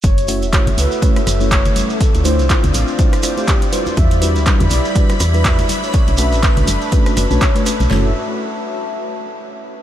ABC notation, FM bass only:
X:1
M:4/4
L:1/16
Q:"Swing 16ths" 1/4=122
K:F#phr
V:1 name="FM bass" clef=bass
F,,,3 E,,, z F,,, C,, z3 F,,,4 z2 | z D,,2 =C,, z D,, A,,, z8 z | E,,3 D,, z E,, B,,, z3 E,,3 z3 | z B,,,2 A,,, z B,,, F,,, z3 F,,, B,,, z3 B,,, |
F,,,2 z12 z2 |]